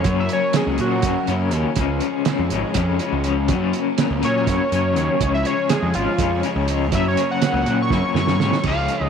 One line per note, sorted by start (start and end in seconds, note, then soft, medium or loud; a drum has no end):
0.00 0.17 C#5 loud
0.00 5.17 C#5 medium
0.04 0.28 F#2 loud
0.04 0.54 F#2 medium
0.04 0.53 C#3 medium
0.04 0.32 F#3 loud
0.04 1.77 F#3 medium
0.04 1.77 A#3 medium
0.04 0.30 A#3 medium
0.04 8.62 C#4 medium
0.04 1.77 A#4 medium
0.04 kick loud
0.04 closed hi-hat medium
0.09 0.29 C#4 loud
0.20 0.30 E5 medium
0.29 0.55 A#3 medium
0.29 0.58 C#4 medium
0.29 closed hi-hat medium
0.33 0.54 F#3 medium
0.33 0.56 C#5 medium
0.53 0.81 C#3 medium
0.53 0.80 F#3 medium
0.53 0.79 A#3 medium
0.53 0.80 G#4 medium
0.53 snare loud
0.53 closed hi-hat medium
0.58 0.78 C#4 medium
0.67 0.78 C#2 medium
0.78 1.02 A#2 medium
0.78 1.03 C#3 medium
0.78 1.04 F#3 medium
0.78 1.05 A#3 medium
0.78 1.07 C#4 medium
0.78 1.28 F#4 loud
0.78 closed hi-hat medium
0.82 1.30 F#2 medium
1.02 1.15 F#2 loud
1.02 1.30 C#3 medium
1.02 1.29 F#3 medium
1.02 kick loud
1.02 closed hi-hat medium
1.07 1.28 A#3 medium
1.07 1.27 C#4 medium
1.27 1.53 F#2 medium
1.27 1.51 C#3 medium
1.27 1.53 F#3 medium
1.27 1.54 A#3 medium
1.27 1.56 C#4 medium
1.27 closed hi-hat medium
1.32 1.78 F#2 medium
1.51 1.64 D#2 medium
1.51 1.76 C#3 medium
1.51 1.77 F#3 medium
1.51 closed hi-hat medium
1.55 1.77 A#3 medium
1.55 1.81 C#4 medium
1.76 2.00 C#2 medium
1.76 2.26 C#3 medium
1.76 3.48 F3 medium
1.76 2.05 F3 medium
1.76 3.48 G#3 medium
1.76 3.48 G#4 medium
1.76 kick loud
1.76 closed hi-hat loud
1.80 2.03 G#3 loud
1.80 2.02 C#4 medium
2.00 2.29 G#3 medium
2.00 2.31 C#4 medium
2.00 closed hi-hat medium
2.06 2.27 F3 medium
2.25 2.54 C#3 medium
2.25 2.53 F3 medium
2.25 snare loud
2.25 closed hi-hat medium
2.30 2.51 G#3 medium
2.30 2.51 C#4 medium
2.39 2.50 F2 medium
2.50 2.63 G#1 medium
2.50 2.75 F3 medium
2.50 2.76 G#3 medium
2.50 2.78 C#4 loud
2.50 closed hi-hat medium
2.55 2.74 C#3 medium
2.74 2.98 F2 loud
2.74 3.02 C#3 medium
2.74 3.01 F3 medium
2.74 3.00 G#3 medium
2.74 kick loud
2.74 closed hi-hat loud
2.79 3.00 C#4 medium
2.99 3.24 C#3 medium
2.99 3.25 F3 medium
2.99 3.26 G#3 medium
2.99 3.28 C#4 medium
2.99 closed hi-hat medium
3.12 3.50 C#2 medium
3.24 3.48 C#3 medium
3.24 3.49 F3 medium
3.24 3.49 G#3 medium
3.24 closed hi-hat medium
3.28 3.53 C#4 medium
3.47 3.72 F#2 loud
3.47 3.99 F#2 medium
3.47 3.97 C#3 medium
3.47 5.18 F#3 medium
3.47 5.19 A#3 medium
3.47 5.19 A#4 medium
3.47 kick loud
3.47 closed hi-hat medium
3.51 3.76 F#3 loud
3.51 3.74 A#3 loud
3.51 3.73 C#4 loud
3.73 3.98 F#3 medium
3.73 3.99 A#3 medium
3.73 4.01 C#4 medium
3.73 closed hi-hat medium
3.98 4.23 C#3 medium
3.98 4.22 F#3 medium
3.98 4.21 A#3 medium
3.98 4.21 C#4 medium
3.98 snare loud
3.98 closed hi-hat medium
4.11 4.22 C#2 loud
4.21 4.72 F#2 medium
4.21 4.45 A#2 medium
4.21 4.45 C#3 medium
4.21 4.47 F#3 medium
4.21 4.47 A#3 medium
4.21 4.50 C#4 loud
4.21 4.35 C#5 loud
4.21 closed hi-hat medium
4.37 5.31 C#5 loud
4.46 4.59 F#2 loud
4.46 4.72 C#3 medium
4.46 4.71 F#3 medium
4.46 4.70 A#3 medium
4.46 4.70 C#4 medium
4.46 kick loud
4.46 snare soft
4.46 closed hi-hat medium
4.70 4.96 F#2 medium
4.70 5.20 F#2 medium
4.70 4.94 C#3 medium
4.70 4.95 F#3 medium
4.70 4.97 A#3 medium
4.70 4.98 C#4 medium
4.70 closed hi-hat medium
4.95 5.08 D#2 medium
4.95 5.19 C#3 medium
4.95 5.20 F#3 medium
4.95 5.20 A#3 medium
4.95 5.23 C#4 medium
4.95 closed hi-hat medium
5.20 5.43 C#2 medium
5.20 5.68 C#3 loud
5.20 5.48 F3 medium
5.20 6.91 F3 medium
5.20 6.91 G#3 medium
5.20 5.46 G#3 loud
5.20 5.45 C#4 loud
5.20 6.91 G#4 medium
5.20 8.61 C#5 loud
5.20 kick loud
5.20 closed hi-hat medium
5.34 5.45 E5 loud
5.45 5.69 F3 medium
5.45 5.71 G#3 medium
5.45 5.72 C#4 medium
5.45 5.69 C#5 loud
5.45 closed hi-hat medium
5.69 5.97 C#3 medium
5.69 5.96 F3 medium
5.69 5.95 G#3 medium
5.69 5.94 C#4 medium
5.69 5.94 G#4 loud
5.69 snare loud
5.69 closed hi-hat loud
5.83 5.94 F2 medium
5.94 6.06 G#1 medium
5.94 6.18 F3 medium
5.94 6.19 G#3 loud
5.94 6.22 C#4 medium
5.94 6.42 F4 loud
5.94 closed hi-hat medium
5.98 6.17 C#3 medium
6.18 6.41 F2 loud
6.18 6.46 C#3 medium
6.18 6.44 F3 medium
6.18 6.44 G#3 medium
6.18 6.43 C#4 medium
6.18 kick loud
6.18 closed hi-hat medium
6.43 6.66 C#3 medium
6.43 6.68 F3 medium
6.43 6.69 G#3 medium
6.43 6.71 C#4 medium
6.43 closed hi-hat medium
6.56 6.92 C#2 medium
6.68 6.91 C#3 medium
6.68 6.91 F3 medium
6.68 6.92 G#3 medium
6.68 6.95 C#4 medium
6.68 closed hi-hat medium
6.92 7.42 F#2 medium
6.92 7.15 F#2 loud
6.92 7.41 C#3 loud
6.92 7.20 F#3 medium
6.92 8.64 F#3 medium
6.92 8.64 A#3 medium
6.92 7.18 A#3 loud
6.92 7.16 C#4 loud
6.92 8.64 A#4 medium
6.92 7.05 E5 loud
6.92 kick loud
6.92 closed hi-hat medium
7.08 7.30 C#5 medium
7.17 7.42 F#3 medium
7.17 7.44 A#3 medium
7.17 7.45 C#4 medium
7.17 closed hi-hat medium
7.31 7.54 F#5 medium
7.42 7.68 C#3 medium
7.42 7.67 F#3 medium
7.42 7.66 A#3 medium
7.42 snare loud
7.42 closed hi-hat medium
7.46 7.65 C#4 medium
7.54 7.65 C#2 loud
7.54 7.79 F#5 medium
7.66 8.17 F#2 medium
7.66 7.89 A#2 medium
7.66 7.90 C#3 medium
7.66 7.91 F#3 loud
7.66 7.92 A#3 medium
7.66 7.93 C#4 loud
7.66 closed hi-hat medium
7.82 8.16 C#6 loud
7.90 8.02 F#2 loud
7.90 8.17 C#3 medium
7.90 8.17 F#3 medium
7.90 8.16 A#3 medium
7.90 8.15 C#4 medium
7.90 kick loud
7.90 snare medium
8.14 8.39 F#2 medium
8.14 8.42 A#3 medium
8.14 8.43 C#4 medium
8.14 snare medium
8.18 8.65 F#2 medium
8.18 8.39 C#3 medium
8.18 8.40 F#3 medium
8.18 8.65 C#6 loud
8.27 snare medium
8.39 8.51 G#2 medium
8.39 8.63 C#3 medium
8.39 8.64 F#3 medium
8.39 8.65 A#3 medium
8.39 snare medium
8.44 8.65 C#4 loud
8.52 snare medium
8.63 8.87 C#2 medium
8.63 9.09 C#3 medium
8.63 9.09 F3 medium
8.63 8.92 F3 medium
8.63 9.09 G#3 medium
8.63 9.09 C#4 medium
8.63 9.09 G#4 medium
8.63 9.09 C#5 medium
8.63 kick loud
8.63 crash medium
8.68 8.90 G#3 medium
8.68 8.90 C#4 medium
8.68 9.09 F5 loud
8.88 9.09 G#3 medium
8.88 9.09 C#4 medium
8.88 closed hi-hat medium
8.93 9.09 F3 medium
9.01 9.09 C#2 medium